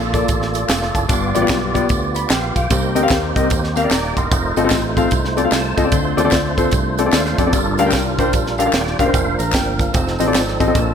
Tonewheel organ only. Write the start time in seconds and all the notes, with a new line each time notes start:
Already playing: A#3 F4 A4 D5
1.08 B3 F4 G4 D5
2.15 D5
2.30 F5
2.56 G5
2.70 A#3 D4 G4 C5
2.75 D#4
3.77 F5 A#5
3.92 D5 G5
4.18 A#4 D#5
4.31 A3 D#4 F4 C5
5.52 A5
5.92 A3 D4 F4 C5
7.13 C5 F5
7.38 A4 D5
7.52 G3 D4 F4 A#4
8.58 A4 D5
8.74 D5 G5
8.99 C5 F5
9.14 F3 A#3 D4 A#4
9.93 F3 C4 D#4 A4
10.74 F3 A#3 D4 A4